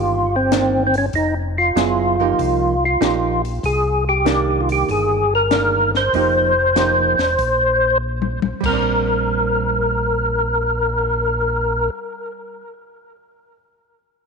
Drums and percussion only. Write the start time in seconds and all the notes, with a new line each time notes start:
0.52 snare, closed hi-hat
0.94 open hi-hat
1.13 kick, open hi-hat
1.77 snare, closed hi-hat
2.39 kick, open hi-hat
3.02 snare, closed hi-hat
3.45 open hi-hat
3.64 kick, open hi-hat
4.26 snare, closed hi-hat
4.69 open hi-hat
4.89 kick, open hi-hat
5.51 snare, closed hi-hat
5.95 snare
6.14 kick, open hi-hat
6.76 snare, closed hi-hat
7.19 snare, open hi-hat
7.39 kick, open hi-hat
8.22 high tom
8.42 high tom
8.64 kick, crash
9.07 cymbal swell